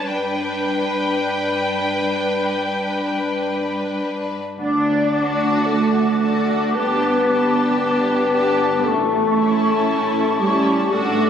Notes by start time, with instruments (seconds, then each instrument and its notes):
0.08 cello section G2, violin section D4 B4 G5, viola section B4
4.58 double bass section D2, french horn section D4, cello section D4, clarinet D5, oboe F#5, flute section D6
5.13 viola section D4, violin section F#4 A5
5.66 double bass section D2, french horn section A3, cello section A3, clarinet A4
6.22 viola section D4, violin section F#4 A5
6.74 double bass section G1, french horn section B3, cello section B3, viola section D4, violin section G4 A5, clarinet B4, oboe A5
7.28 viola section D4, violin section G4 A5
7.79 double bass section G1, french horn section B3, cello section B3, clarinet B4
8.32 viola section D4, violin section G4 A5
8.83 double bass section A1, cello section A3, french horn section A3, clarinet A4, flute section C#6
9.36 viola section C#4, violin section E4 A5
9.89 double bass section A1
10.38 french horn section G3, cello section G3, viola section C#4, violin section E4 A5, clarinet G4
10.91 double bass section A1, french horn section A3, cello section A3, viola section D4, violin section F#4 A5, clarinet A4, oboe F#5, flute section D6